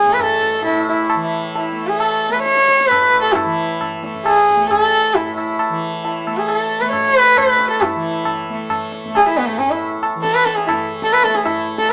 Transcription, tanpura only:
0, 0, Header, 1, 2, 480
1, 0, Start_track
1, 0, Tempo, 449775
1, 1184, Time_signature, 5, 2, 24, 8
1, 6455, Tempo, 441826
1, 12841, End_track
2, 0, Start_track
2, 0, Title_t, "Tanpura"
2, 0, Program_c, 0, 104
2, 0, Note_on_c, 0, 45, 55
2, 0, Note_on_c, 0, 52, 61
2, 0, Note_on_c, 0, 57, 54
2, 39, Note_off_c, 0, 57, 0
2, 39, Note_on_c, 0, 57, 55
2, 634, Note_off_c, 0, 45, 0
2, 638, Note_on_c, 0, 45, 58
2, 1218, Note_off_c, 0, 52, 0
2, 1222, Note_on_c, 0, 52, 61
2, 1834, Note_off_c, 0, 57, 0
2, 1834, Note_on_c, 0, 57, 58
2, 2446, Note_off_c, 0, 57, 0
2, 2446, Note_on_c, 0, 57, 56
2, 3053, Note_off_c, 0, 45, 0
2, 3057, Note_on_c, 0, 45, 53
2, 3666, Note_off_c, 0, 52, 0
2, 3670, Note_on_c, 0, 52, 60
2, 4293, Note_off_c, 0, 57, 0
2, 4293, Note_on_c, 0, 57, 58
2, 4870, Note_off_c, 0, 57, 0
2, 4870, Note_on_c, 0, 57, 55
2, 5486, Note_off_c, 0, 45, 0
2, 5490, Note_on_c, 0, 45, 52
2, 6069, Note_off_c, 0, 52, 0
2, 6073, Note_on_c, 0, 52, 58
2, 6694, Note_off_c, 0, 57, 0
2, 6694, Note_on_c, 0, 57, 55
2, 7293, Note_off_c, 0, 57, 0
2, 7293, Note_on_c, 0, 57, 57
2, 7874, Note_off_c, 0, 45, 0
2, 7878, Note_on_c, 0, 45, 56
2, 8512, Note_off_c, 0, 52, 0
2, 8517, Note_on_c, 0, 52, 58
2, 9115, Note_off_c, 0, 57, 0
2, 9115, Note_on_c, 0, 57, 65
2, 9718, Note_off_c, 0, 57, 0
2, 9718, Note_on_c, 0, 57, 61
2, 10310, Note_off_c, 0, 45, 0
2, 10315, Note_on_c, 0, 45, 58
2, 10905, Note_off_c, 0, 52, 0
2, 10909, Note_on_c, 0, 52, 58
2, 11492, Note_off_c, 0, 57, 0
2, 11492, Note_on_c, 0, 57, 64
2, 12112, Note_off_c, 0, 57, 0
2, 12112, Note_on_c, 0, 57, 62
2, 12720, Note_off_c, 0, 45, 0
2, 12725, Note_on_c, 0, 45, 55
2, 12841, Note_off_c, 0, 45, 0
2, 12841, Note_off_c, 0, 52, 0
2, 12841, Note_off_c, 0, 57, 0
2, 12841, End_track
0, 0, End_of_file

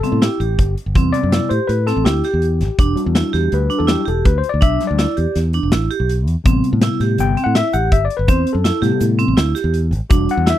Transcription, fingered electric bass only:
0, 0, Header, 1, 2, 480
1, 0, Start_track
1, 0, Tempo, 366300
1, 1251, Time_signature, 5, 2, 24, 8
1, 13873, End_track
2, 0, Start_track
2, 0, Title_t, "Fingered electric bass"
2, 0, Program_c, 0, 33
2, 157, Note_on_c, 0, 45, 75
2, 360, Note_off_c, 0, 45, 0
2, 523, Note_on_c, 0, 33, 80
2, 724, Note_off_c, 0, 33, 0
2, 770, Note_on_c, 0, 31, 91
2, 968, Note_off_c, 0, 31, 0
2, 1129, Note_on_c, 0, 31, 73
2, 1229, Note_off_c, 0, 31, 0
2, 1250, Note_on_c, 0, 40, 90
2, 1449, Note_off_c, 0, 40, 0
2, 1616, Note_on_c, 0, 42, 87
2, 1813, Note_off_c, 0, 42, 0
2, 1975, Note_on_c, 0, 45, 76
2, 2073, Note_off_c, 0, 45, 0
2, 2213, Note_on_c, 0, 45, 80
2, 2511, Note_off_c, 0, 45, 0
2, 2574, Note_on_c, 0, 33, 73
2, 2673, Note_off_c, 0, 33, 0
2, 2699, Note_on_c, 0, 38, 79
2, 2895, Note_off_c, 0, 38, 0
2, 3060, Note_on_c, 0, 40, 72
2, 3417, Note_on_c, 0, 33, 86
2, 3437, Note_off_c, 0, 40, 0
2, 3516, Note_off_c, 0, 33, 0
2, 3651, Note_on_c, 0, 28, 88
2, 3852, Note_off_c, 0, 28, 0
2, 4014, Note_on_c, 0, 40, 89
2, 4214, Note_off_c, 0, 40, 0
2, 4373, Note_on_c, 0, 40, 77
2, 4573, Note_off_c, 0, 40, 0
2, 4620, Note_on_c, 0, 38, 84
2, 4817, Note_off_c, 0, 38, 0
2, 4976, Note_on_c, 0, 40, 75
2, 5175, Note_off_c, 0, 40, 0
2, 5339, Note_on_c, 0, 28, 74
2, 5537, Note_off_c, 0, 28, 0
2, 5578, Note_on_c, 0, 38, 88
2, 5777, Note_off_c, 0, 38, 0
2, 5946, Note_on_c, 0, 38, 76
2, 6042, Note_off_c, 0, 38, 0
2, 6053, Note_on_c, 0, 35, 88
2, 6254, Note_off_c, 0, 35, 0
2, 6429, Note_on_c, 0, 38, 84
2, 6623, Note_off_c, 0, 38, 0
2, 6785, Note_on_c, 0, 40, 79
2, 6881, Note_off_c, 0, 40, 0
2, 7019, Note_on_c, 0, 40, 84
2, 7316, Note_off_c, 0, 40, 0
2, 7378, Note_on_c, 0, 28, 71
2, 7477, Note_off_c, 0, 28, 0
2, 7495, Note_on_c, 0, 33, 85
2, 7695, Note_off_c, 0, 33, 0
2, 7860, Note_on_c, 0, 35, 75
2, 8219, Note_off_c, 0, 35, 0
2, 8219, Note_on_c, 0, 40, 77
2, 8318, Note_off_c, 0, 40, 0
2, 8461, Note_on_c, 0, 33, 80
2, 8658, Note_off_c, 0, 33, 0
2, 8815, Note_on_c, 0, 45, 91
2, 9014, Note_off_c, 0, 45, 0
2, 9173, Note_on_c, 0, 45, 80
2, 9373, Note_off_c, 0, 45, 0
2, 9419, Note_on_c, 0, 31, 82
2, 9617, Note_off_c, 0, 31, 0
2, 9777, Note_on_c, 0, 45, 76
2, 9975, Note_off_c, 0, 45, 0
2, 10142, Note_on_c, 0, 33, 77
2, 10338, Note_off_c, 0, 33, 0
2, 10376, Note_on_c, 0, 31, 83
2, 10574, Note_off_c, 0, 31, 0
2, 10732, Note_on_c, 0, 31, 80
2, 10833, Note_off_c, 0, 31, 0
2, 10852, Note_on_c, 0, 40, 88
2, 11051, Note_off_c, 0, 40, 0
2, 11198, Note_on_c, 0, 42, 86
2, 11403, Note_off_c, 0, 42, 0
2, 11561, Note_on_c, 0, 45, 79
2, 11665, Note_off_c, 0, 45, 0
2, 11803, Note_on_c, 0, 45, 83
2, 12104, Note_off_c, 0, 45, 0
2, 12161, Note_on_c, 0, 33, 81
2, 12265, Note_off_c, 0, 33, 0
2, 12277, Note_on_c, 0, 38, 90
2, 12481, Note_off_c, 0, 38, 0
2, 12632, Note_on_c, 0, 40, 83
2, 12987, Note_on_c, 0, 33, 83
2, 13007, Note_off_c, 0, 40, 0
2, 13095, Note_off_c, 0, 33, 0
2, 13244, Note_on_c, 0, 28, 93
2, 13444, Note_off_c, 0, 28, 0
2, 13593, Note_on_c, 0, 40, 94
2, 13797, Note_off_c, 0, 40, 0
2, 13873, End_track
0, 0, End_of_file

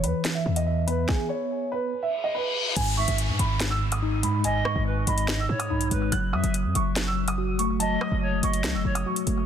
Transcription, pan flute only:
0, 0, Header, 1, 2, 480
1, 0, Start_track
1, 0, Tempo, 419580
1, 1244, Time_signature, 4, 2, 24, 8
1, 10821, End_track
2, 0, Start_track
2, 0, Title_t, "Pan flute"
2, 0, Program_c, 0, 75
2, 3399, Note_on_c, 0, 76, 86
2, 3629, Note_off_c, 0, 76, 0
2, 5077, Note_on_c, 0, 75, 110
2, 5531, Note_off_c, 0, 75, 0
2, 5559, Note_on_c, 0, 71, 81
2, 5789, Note_off_c, 0, 71, 0
2, 5799, Note_on_c, 0, 75, 82
2, 6252, Note_off_c, 0, 75, 0
2, 6284, Note_on_c, 0, 73, 87
2, 6735, Note_off_c, 0, 73, 0
2, 6759, Note_on_c, 0, 71, 91
2, 6989, Note_off_c, 0, 71, 0
2, 7238, Note_on_c, 0, 76, 84
2, 7469, Note_off_c, 0, 76, 0
2, 8921, Note_on_c, 0, 75, 108
2, 9373, Note_off_c, 0, 75, 0
2, 9404, Note_on_c, 0, 73, 93
2, 9632, Note_off_c, 0, 73, 0
2, 9647, Note_on_c, 0, 75, 85
2, 10096, Note_off_c, 0, 75, 0
2, 10125, Note_on_c, 0, 73, 80
2, 10352, Note_off_c, 0, 73, 0
2, 10821, End_track
0, 0, End_of_file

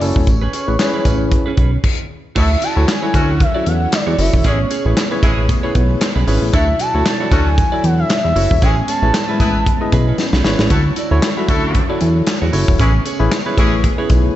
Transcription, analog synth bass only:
0, 0, Header, 1, 2, 480
1, 0, Start_track
1, 0, Tempo, 521739
1, 252, Time_signature, 4, 2, 24, 8
1, 13208, End_track
2, 0, Start_track
2, 0, Title_t, "Analog synth bass"
2, 0, Program_c, 0, 38
2, 8, Note_on_c, 0, 30, 103
2, 115, Note_off_c, 0, 30, 0
2, 147, Note_on_c, 0, 28, 91
2, 230, Note_off_c, 0, 28, 0
2, 250, Note_on_c, 0, 33, 104
2, 440, Note_off_c, 0, 33, 0
2, 626, Note_on_c, 0, 33, 94
2, 709, Note_off_c, 0, 33, 0
2, 968, Note_on_c, 0, 33, 91
2, 1265, Note_off_c, 0, 33, 0
2, 1450, Note_on_c, 0, 35, 86
2, 1640, Note_off_c, 0, 35, 0
2, 2170, Note_on_c, 0, 38, 106
2, 2360, Note_off_c, 0, 38, 0
2, 2544, Note_on_c, 0, 38, 100
2, 2628, Note_off_c, 0, 38, 0
2, 2890, Note_on_c, 0, 38, 112
2, 3186, Note_off_c, 0, 38, 0
2, 3372, Note_on_c, 0, 40, 97
2, 3562, Note_off_c, 0, 40, 0
2, 3745, Note_on_c, 0, 40, 101
2, 3829, Note_off_c, 0, 40, 0
2, 3851, Note_on_c, 0, 30, 112
2, 3957, Note_off_c, 0, 30, 0
2, 3989, Note_on_c, 0, 28, 91
2, 4071, Note_off_c, 0, 28, 0
2, 4092, Note_on_c, 0, 33, 99
2, 4281, Note_off_c, 0, 33, 0
2, 4465, Note_on_c, 0, 33, 107
2, 4548, Note_off_c, 0, 33, 0
2, 4810, Note_on_c, 0, 33, 96
2, 5106, Note_off_c, 0, 33, 0
2, 5293, Note_on_c, 0, 35, 102
2, 5482, Note_off_c, 0, 35, 0
2, 5667, Note_on_c, 0, 35, 108
2, 5750, Note_off_c, 0, 35, 0
2, 5774, Note_on_c, 0, 32, 100
2, 5879, Note_off_c, 0, 32, 0
2, 5906, Note_on_c, 0, 33, 97
2, 5989, Note_off_c, 0, 33, 0
2, 6011, Note_on_c, 0, 38, 111
2, 6201, Note_off_c, 0, 38, 0
2, 6388, Note_on_c, 0, 38, 106
2, 6470, Note_off_c, 0, 38, 0
2, 6730, Note_on_c, 0, 38, 102
2, 7026, Note_off_c, 0, 38, 0
2, 7211, Note_on_c, 0, 40, 103
2, 7401, Note_off_c, 0, 40, 0
2, 7585, Note_on_c, 0, 40, 109
2, 7669, Note_off_c, 0, 40, 0
2, 7692, Note_on_c, 0, 30, 95
2, 7798, Note_off_c, 0, 30, 0
2, 7830, Note_on_c, 0, 28, 101
2, 7912, Note_off_c, 0, 28, 0
2, 7933, Note_on_c, 0, 33, 122
2, 8122, Note_off_c, 0, 33, 0
2, 8303, Note_on_c, 0, 33, 107
2, 8387, Note_off_c, 0, 33, 0
2, 8648, Note_on_c, 0, 33, 99
2, 8945, Note_off_c, 0, 33, 0
2, 9130, Note_on_c, 0, 35, 99
2, 9320, Note_off_c, 0, 35, 0
2, 9504, Note_on_c, 0, 35, 105
2, 9588, Note_off_c, 0, 35, 0
2, 9610, Note_on_c, 0, 32, 95
2, 9716, Note_off_c, 0, 32, 0
2, 9745, Note_on_c, 0, 33, 95
2, 9829, Note_off_c, 0, 33, 0
2, 9849, Note_on_c, 0, 38, 105
2, 10039, Note_off_c, 0, 38, 0
2, 10223, Note_on_c, 0, 38, 99
2, 10308, Note_off_c, 0, 38, 0
2, 10566, Note_on_c, 0, 38, 95
2, 10863, Note_off_c, 0, 38, 0
2, 11052, Note_on_c, 0, 40, 101
2, 11241, Note_off_c, 0, 40, 0
2, 11425, Note_on_c, 0, 40, 95
2, 11509, Note_off_c, 0, 40, 0
2, 11530, Note_on_c, 0, 30, 112
2, 11637, Note_off_c, 0, 30, 0
2, 11668, Note_on_c, 0, 28, 94
2, 11751, Note_off_c, 0, 28, 0
2, 11773, Note_on_c, 0, 33, 120
2, 11962, Note_off_c, 0, 33, 0
2, 12145, Note_on_c, 0, 33, 102
2, 12229, Note_off_c, 0, 33, 0
2, 12489, Note_on_c, 0, 33, 98
2, 12786, Note_off_c, 0, 33, 0
2, 12972, Note_on_c, 0, 35, 105
2, 13161, Note_off_c, 0, 35, 0
2, 13208, End_track
0, 0, End_of_file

